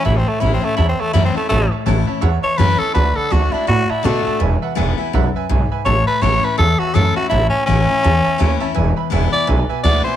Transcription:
0.03 A1 A2 E4 C#5 E5 A5
0.17 C4
0.26 A3 C#5 E5 A5, muted upright bass stroke
0.40 A1 E3 A3 C#4 E4 C#5 E5 B5
0.53 C4
0.61 C#4 E4 C#5 E5 A5, muted upright bass stroke
0.65 A3
0.76 E2 E4 C#5 E5 A5
0.89 C4
0.98 A3 C#5 E5 A5
1.13 F#2 E3 A3 C#4 E4 C#5 E5 A5
1.25 C4
1.35 A3 C#4 E4 C#5 E5 A5, muted upright bass stroke
1.49 A1 A2 A3 C#5 E5 A5
1.71 C#5 E5 A5, muted upright bass stroke
1.86 A1 E3 A3 C#4 E4 C#5 E5 A5
2.07 C#4 E4 C#5 E5 A5, muted upright bass stroke
2.21 E2 C#5 E5 F#5
2.42 C#5 E5 A5, muted upright bass stroke
2.57 F#2 E3 A3 C#4 E4 B4 C#5 E5 A5
2.78 C#4 E4 A4 C#5 E5 A5, muted upright bass stroke
2.93 D2 D3 B4 D5 F#5 A5
3.15 A4 D5 F#5 B5, muted upright bass stroke
3.30 D2 D3 A3 D4 F#4 D5 F#5 A5
3.52 D4 E4 F#4 D5 F#5 A5, muted upright bass stroke
3.67 A2 F#4 D5 F#5 B5
3.89 E4 D5 F#5 A5, muted upright bass stroke
4.03 B2 D3 A3 D4 F#4 D5 F#5 A5
4.25 D4 F#4 D5 F#5 A5, muted upright bass stroke
4.40 E1 E2 B4 E5 G#5
4.62 B4 E5 F#5, muted upright bass stroke
4.75 E1 D3 G#3 B3 E4 B4 E5 G#5
4.98 B3 E4 B4 E5 G#5, muted upright bass stroke
5.13 B1 F#2 B4 E5 F#5
5.35 B4 E5 G#5, muted upright bass stroke
5.49 B1 G#2 B4 E5 G#5
5.71 B4 E5 G#5 B5, muted upright bass stroke
5.85 A1 A2 C#5 E5 A5
6.06 B4 C#5 E5 A5, muted upright bass stroke
6.21 A1 E3 A3 C#4 E4 C#5 E5 A5
6.43 C#4 E4 B4 C#5 E5 A5, muted upright bass stroke
6.58 E2 A4 C#5 E5 A5
6.79 F#4 C#5 E5 A5, muted upright bass stroke
6.93 F#2 E3 A3 C#4 E4 A4 C#5 E5 A5
7.15 C#4 E4 F#4 C#5 E5 A5, muted upright bass stroke
7.30 A1 A2 E4 C#5 E5 A5
7.50 C#4 C#5 E5 A5, muted upright bass stroke
7.66 A1 E3 A3 C#4 E4 C#5 E5 F#5
7.88 C#4 E4 C#5 E5 G#5, muted upright bass stroke
8.02 E2 C#5 E5 A5
8.24 C#5 E5 A5, muted upright bass stroke
8.38 D#2 E3 A3 C#4 E4 C#5 E5 A5
8.60 C#4 E4 C#5 E5 A5
8.75 E1 E2 B4 E5 G#5
8.96 B4 E5 B5, muted upright bass stroke
9.10 E1 D3 G#3 B3 E4 B4 E5 G#5
9.33 B3 E4 B4 D5 E5 G#5, muted upright bass stroke
9.47 B1 B2 B4 E5 G#5
9.69 B4 E5 G#5, muted upright bass stroke
9.84 D2 D3 G#3 B3 E4 B4 D5 E5 F#5
10.04 B3 E4 B4 C5 E5 G#5, muted upright bass stroke

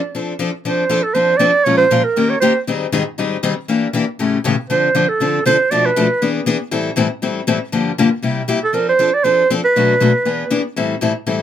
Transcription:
Already playing: D5
0.15 F3 C4 D4 A4
0.39 F3 C4 D4 A4
0.65 F3 C4 D4 A4 C5
0.89 F3 C4 D4 A4
1.03 A4
1.13 F3 C4 D4 A4 C5
1.37 F3 C4 D4 A4 D5
1.64 A#2 F3 G#3 C#4 F4 A#4 C#5
1.77 C5
1.91 A#2 F3 G#3 C#4 F4 A#4
2.04 A#4
2.16 D#3 A#3 C#4 G4 A#4
2.30 C#5
2.40 D#3 A#3 C#4 G4 A#4 C5
2.67 G#2 D#3 G3 C4 D#4 G#4
2.92 G#2 D#3 G3 C4 D#4 G#4
3.18 G#2 D#3 G3 C4 D#4 G#4
3.43 G#2 D#3 G3 C4 D#4 G#4
3.68 E3 A#3 D4 G4
3.93 E3 A#3 D4 G4
4.19 A2 C#3 E3 A3 C#4 G4
4.44 A2 C#3 E3 A3 C#4 G4
4.70 D3 F3 C4 D4 A4 C5
4.95 D3 F3 C4 D4 A4
5.09 A4
5.20 D3 F3 C4 D4 A4
5.46 D3 F3 C4 D4 A4 C5
5.71 B2 F3 A3 D4 A4 D5
5.86 B4
5.96 B2 F3 A3 D4 A4
6.22 E3 B3 D4 G#4
6.46 E3 B3 D4 G#4
6.71 A2 E3 G3 C4 E4 A4
6.96 A2 E3 G3 C4 E4 A4
7.22 A2 E3 G3 C4 E4 A4
7.47 A2 E3 G3 C4 E4 A4
7.72 G2 D3 F3 A#3 D4 G4
7.98 G2 D3 F3 A#3 D4 G4
8.22 C3 G3 A#3 E4 G4
8.48 C3 G3 A#3 E4 G4
8.64 A4
8.73 F3 C4 D4 A4 A#4
8.89 C5
8.99 F3 C4 D4 A4
9.14 D5
9.24 F3 C4 D4 A4 C5
9.50 F3 C4 D4 A4
9.65 B4
9.76 B2 F#3 A3 D4 F#4
10.00 B2 F#3 A3 D4 F#4
10.25 E3 B3 D4 G#4
10.50 E3 B3 D4 G#4
10.76 A2 E3 G3 C4 E4 A4
11.01 A2 E3 G3 C4 E4 A4
11.26 A2 E3 G3 C4 E4 A4

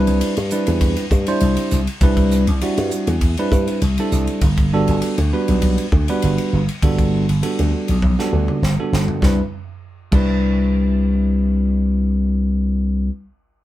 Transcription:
Already playing: G3 C4 D4 E4 B4
0.07 C2, ride
0.21 ride
0.37 G2, ride
0.51 G3 C4 D4 E4 B4, hi-hat pedal
0.67 E2, ride
0.81 kick, ride
0.97 ride
1.11 G2, kick, hi-hat pedal
1.27 G3 C4 D4 E4 C5, ride
1.41 C2, ride
1.57 ride
1.71 C2, hi-hat pedal
1.87 ride
2.01 C2 G3 C4 D4 E4 B4, kick, ride
2.17 kick, ride
2.31 hi-hat pedal
2.47 C2, ride
2.61 G3 C4 D4 E4 F#4, ride
2.78 G2, ride
2.91 hi-hat pedal
3.07 E2, ride
3.21 kick, ride
3.37 G3 C4 D4 E4 B4, ride
3.52 G2, kick, hi-hat pedal
3.68 ride
3.82 C2, ride
3.98 G3 C4 D4 E4 A4, ride
4.12 C2, hi-hat pedal
4.27 ride
4.41 G1, kick, ride
4.57 kick, ride
4.74 G3 B3 D4 F#4 A4
4.88 G1, ride
5.02 ride
5.18 D2, ride
5.33 G3 B3 D4 F#4 B4
5.48 B1, ride
5.62 kick, ride
5.78 ride
5.92 D2, kick
6.08 G3 B3 D4 F#4 B4, ride
6.22 G1, ride
6.38 ride
6.53 G1
6.69 ride
6.83 G1 G3 B3 D4 F#4 A4, kick, ride
6.99 kick, ride
7.29 G1, ride
7.43 G3 B3 D4 F#4 A4, ride
7.59 D2, ride
7.88 B1, ride
8.02 kick, high tom
8.19 G3 B3 D4 F#4 A4, snare
8.33 D2
8.48 mid tom
8.62 G1, snare
8.79 G3 B3 D4 F#4 A4
8.92 G1, snare
9.08 floor tom
9.21 C2 G3 C4 D4 E4, kick, snare
9.25 B4
10.12 C2 G3 C4 D4 E4 B4, kick, crash

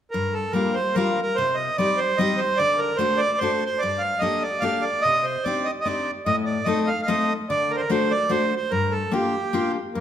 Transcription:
0.11 G2 A#4
0.34 A4
0.52 G3 A#3 D4 A#4
0.56 F4
0.74 C5
0.94 G3 A#3 D4 F4 A#4
1.22 A#4
1.35 C3 C5
1.55 D#5
1.78 G3 C4 D#4 G4 D5
1.97 C5
2.17 G3 C4 D#4 G4 D#5
2.37 C5
2.57 D3 D5
2.78 A#4
2.97 A3 D4 F#4 C5
3.01 A4
3.17 D5
3.38 A3 D4 C5
3.42 F#4 A4
3.66 C5
3.79 D5
3.83 G2
3.99 F5
4.19 A#3 D4 G4 A4 D#5
4.42 D5
4.60 A#3 D4 G4 A4 F5
4.81 D5
5.01 C3 D#5
5.23 C5
5.44 C4 D4 D#4 G4 D5
5.65 D#5
5.81 D5 D#5
5.85 C4 D4 D#4 G4
6.26 A2 D#5
6.45 D5
6.65 A3 C4 D#4 A4 D#5
6.87 F5
7.02 F5
7.07 A3 C4 D#4 A4 D#5
7.50 D3 D5
7.71 A#4
7.76 A#4 C5
7.90 A3 D4 F#4 A4 C5
8.11 D5
8.29 A3 D4 F#4 A4 C5
8.56 C5
8.71 G2 A#4
8.91 A4
9.12 A#3 D4 F4 G4
9.53 A#3 D4 F4 G4
9.94 G2 A#3

